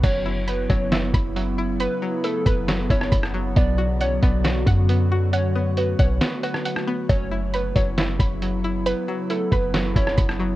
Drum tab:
CC |x---------------|----------------|----------------|----------------|
HH |x---x-x-x-x-x---|x---x-x-x-x-x---|x---x-x-x-x-x---|x---x-x-x-x-x---|
SD |--------o-------|--------o--r-r--|--------o-------|--------o--r-r--|
BD |o-----o---o-----|------o---o-o---|o-----o---o-----|------o---------|

CC |----------------|----------------|
HH |x---x-x-x-x-x---|x---x-x-x-x-x---|
SD |--------o-------|--------o--r-r--|
BD |o-----o---o-----|------o---o-o---|